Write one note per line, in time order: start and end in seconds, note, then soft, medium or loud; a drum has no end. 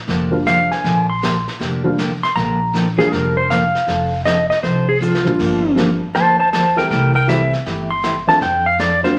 0.07 0.69 F1 medium
0.07 0.30 D3 medium
0.07 0.30 F3 medium
0.07 0.30 A#3 medium
0.07 0.30 D4 medium
0.07 0.30 G4 medium
0.07 brush sweep soft
0.07 snare soft
0.31 0.81 F3 medium
0.31 0.81 G3 medium
0.31 0.81 A#3 medium
0.31 0.81 D4 medium
0.31 0.81 F4 medium
0.46 0.58 D3 medium
0.46 0.58 F3 medium
0.46 0.58 A#3 medium
0.46 0.58 D4 medium
0.46 0.58 G4 medium
0.46 0.70 F5 medium
0.46 snare medium
0.46 hi-hat pedal medium
0.71 1.08 G#5 medium
0.71 snare soft
0.84 1.45 A#1 loud
0.84 1.06 D3 medium
0.84 1.06 F3 medium
0.84 1.06 A#3 medium
0.84 1.07 D4 medium
0.84 1.07 G4 medium
0.84 brush sweep soft
0.84 snare soft
1.10 1.46 C6 medium
1.22 1.34 D3 medium
1.22 1.34 F3 medium
1.22 1.34 A#3 medium
1.22 1.34 D4 medium
1.22 1.34 G4 medium
1.22 snare medium
1.22 hi-hat pedal medium
1.48 snare soft
1.59 2.21 F1 medium
1.59 1.82 D3 medium
1.59 1.82 F3 medium
1.59 1.82 A#3 medium
1.59 1.82 D4 medium
1.59 1.82 G4 medium
1.59 brush sweep soft
1.59 snare soft
1.84 1.96 F3 medium
1.84 1.96 G3 medium
1.84 1.97 A#3 medium
1.84 1.97 D4 medium
1.84 1.97 F4 medium
1.98 2.10 D3 medium
1.98 2.10 F3 medium
1.98 2.10 A#3 medium
1.98 2.10 D4 medium
1.98 2.10 G4 medium
1.98 snare medium
1.98 hi-hat pedal medium
2.23 2.35 C6 medium
2.23 snare soft
2.35 2.97 A#1 medium
2.35 2.58 D3 medium
2.35 2.58 F3 medium
2.35 2.58 A#3 medium
2.35 2.58 D4 medium
2.35 2.58 G4 medium
2.35 2.73 A#5 medium
2.35 brush sweep soft
2.35 snare soft
2.73 2.85 D3 medium
2.73 2.85 F3 medium
2.73 2.86 A#3 medium
2.73 2.86 D4 medium
2.73 2.86 G4 medium
2.73 snare medium
2.73 hi-hat pedal medium
2.98 3.47 F3 medium
2.98 3.47 G3 medium
2.98 3.47 A#3 medium
2.98 3.47 D4 medium
2.98 3.47 F4 medium
2.98 3.12 G#4 medium
2.98 snare soft
3.12 3.72 F1 medium
3.12 3.34 D3 medium
3.12 3.34 F3 medium
3.12 3.34 A#3 medium
3.12 3.34 D4 medium
3.12 3.34 G4 medium
3.12 3.36 A#4 medium
3.12 brush sweep soft
3.12 snare soft
3.37 3.50 C5 medium
3.50 3.62 D3 medium
3.50 3.62 F3 medium
3.50 3.62 A#3 medium
3.50 3.62 D4 medium
3.50 3.62 G4 medium
3.50 4.24 F5 loud
3.50 snare medium
3.50 hi-hat pedal medium
3.75 snare soft
3.86 4.48 F1 medium
3.86 4.09 F3 medium
3.86 4.09 C4 medium
3.86 4.10 D4 medium
3.86 4.10 A4 medium
3.86 brush sweep medium
3.86 snare soft
4.25 4.37 F3 medium
4.25 4.37 C4 medium
4.25 4.37 D4 medium
4.25 4.38 A4 medium
4.25 4.49 D#5 medium
4.25 snare medium
4.25 hi-hat pedal medium
4.50 4.63 D#5 medium
4.50 snare soft
4.62 5.24 C2 medium
4.62 4.85 F3 medium
4.62 4.85 C4 medium
4.62 4.85 D4 medium
4.62 4.85 A4 medium
4.62 4.87 C5 medium
4.62 brush sweep medium
4.62 snare soft
4.89 5.01 G#4 medium
5.00 5.13 F3 medium
5.00 5.13 C4 medium
5.00 5.13 D4 medium
5.00 5.75 F4 medium
5.00 5.13 A4 medium
5.00 hi-hat pedal medium
5.15 snare medium
5.24 5.74 F3 medium
5.24 5.74 G3 medium
5.24 5.74 A#3 medium
5.24 5.74 D4 medium
5.24 5.75 F4 medium
5.24 mid tom medium
5.39 6.00 G1 medium
5.39 5.61 D3 medium
5.39 5.61 F3 medium
5.39 5.61 A#3 medium
5.39 5.61 D4 medium
5.39 5.61 G4 medium
5.39 brush sweep medium
5.39 kick medium
5.39 snare soft
5.39 crash medium
5.76 5.88 D3 medium
5.76 5.98 F3 medium
5.76 5.89 F3 medium
5.76 5.99 G3 medium
5.76 5.99 A#3 medium
5.76 5.89 A#3 medium
5.76 5.99 D4 medium
5.76 5.89 D4 medium
5.76 5.99 F4 medium
5.76 5.89 G4 medium
5.76 snare medium
5.76 hi-hat pedal medium
6.15 6.76 D2 medium
6.15 6.37 D3 medium
6.15 6.37 F3 medium
6.15 6.37 A#3 medium
6.15 6.37 D4 medium
6.15 6.37 G4 medium
6.15 6.39 C5 medium
6.15 6.39 A5 loud
6.15 brush sweep medium
6.15 snare soft
6.40 6.51 C5 medium
6.40 6.52 A5 medium
6.53 6.64 D3 medium
6.53 6.65 F3 medium
6.53 6.65 A#3 medium
6.53 6.65 D4 medium
6.53 6.65 G4 medium
6.53 6.75 C5 medium
6.53 6.77 A5 medium
6.53 snare medium
6.53 hi-hat pedal medium
6.76 6.89 E3 medium
6.76 6.89 G3 medium
6.76 6.89 A3 medium
6.76 6.89 C4 medium
6.76 6.89 G4 medium
6.76 6.89 A#4 medium
6.76 6.90 G5 medium
6.76 snare soft
6.90 7.51 C2 loud
6.90 7.12 C3 medium
6.90 7.12 E3 medium
6.90 7.13 A3 medium
6.90 7.13 E4 medium
6.90 7.13 G4 medium
6.90 7.13 A#4 medium
6.90 7.14 G5 medium
6.90 brush sweep soft
6.90 snare soft
7.15 7.27 A#4 medium
7.15 7.28 G5 medium
7.27 7.39 C3 medium
7.27 7.50 E3 medium
7.27 7.40 E3 medium
7.27 7.50 G3 medium
7.27 7.50 A3 medium
7.27 7.40 A3 medium
7.27 7.50 C4 medium
7.27 7.40 E4 medium
7.27 7.50 E4 medium
7.27 7.40 G4 medium
7.27 7.52 E5 loud
7.27 snare medium
7.27 hi-hat pedal medium
7.53 snare soft
7.66 8.27 G1 medium
7.66 7.88 C3 medium
7.66 7.88 E3 medium
7.66 7.88 A3 medium
7.66 7.88 E4 medium
7.66 7.88 G4 medium
7.66 brush sweep medium
7.66 snare soft
7.91 8.27 C6 medium
8.03 8.15 C3 medium
8.03 8.15 E3 medium
8.03 8.15 A3 medium
8.03 8.15 E4 medium
8.03 8.15 G4 medium
8.03 snare medium
8.03 hi-hat pedal medium
8.27 8.40 F3 medium
8.27 8.40 A3 medium
8.27 8.40 C4 medium
8.27 8.40 D4 medium
8.27 8.40 F4 medium
8.27 8.41 A5 medium
8.27 snare soft
8.41 9.01 F2 loud
8.41 8.63 F3 medium
8.41 8.64 C4 medium
8.41 8.64 D4 medium
8.41 8.64 A4 medium
8.41 8.66 G5 medium
8.41 brush sweep medium
8.41 snare soft
8.66 8.79 F5 medium
8.78 8.90 F3 medium
8.78 8.91 C4 medium
8.78 8.91 D4 medium
8.78 8.91 A4 medium
8.78 9.03 D5 medium
8.78 snare medium
8.78 hi-hat pedal soft
9.03 9.15 F#3 medium
9.03 9.15 A#3 medium
9.03 9.15 C4 medium
9.03 9.16 D4 medium
9.03 9.16 F4 loud
9.03 9.17 C5 medium
9.03 snare soft